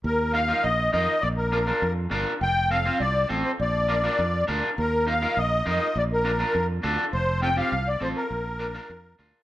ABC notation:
X:1
M:4/4
L:1/8
Q:1/4=203
K:Bb
V:1 name="Accordion"
B2 f2 e2 e2 | d B4 z3 | g2 f2 d2 z c | d6 z2 |
B2 f2 e2 e2 | d B4 z3 | c2 g f2 d c B- | B6 z2 |]
V:2 name="Clean electric guitar"
z2 [EFB] [EFB] z2 [EFB] z | z2 [DFB] [DFB] z2 [DFB] z | z2 [CFA] [CFc] z2 [CFA] z | z2 [DFB] [DFB] z2 [DFB] z |
z2 [EFB] [EFB] z2 [EFB] z | z2 [DFB] [DFB] z2 [DFA] z | z2 [CFA] [CFG] z2 [CFA] z | z2 [DFB] [DFB] z2 [DFB] z |]
V:3 name="Fingered electric bass" clef=bass
E,,4 B,,,2 F,, z | B,,,4 F,,2 G,,, z | F,,,4 C,,2 A,,, z | B,,,4 F,,2 D,, z |
E,,4 B,,,2 F,, z | B,,,4 F,,2 D,, z | F,,,4 C,,2 A,,, z | B,,,4 F,,2 D,, z |]